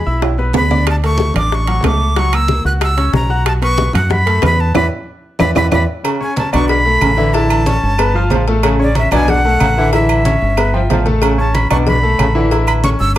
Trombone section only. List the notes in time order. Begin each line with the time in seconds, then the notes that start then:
6.04 C#3
6.53 B2
7.01 C#3
7.17 D3
8.14 F3
8.30 F3
8.63 C#3
9.12 B2
9.60 C#3
9.77 D3
10.73 F3
10.90 F3
11.22 C#3
11.70 B2
12.19 C#3
12.35 D3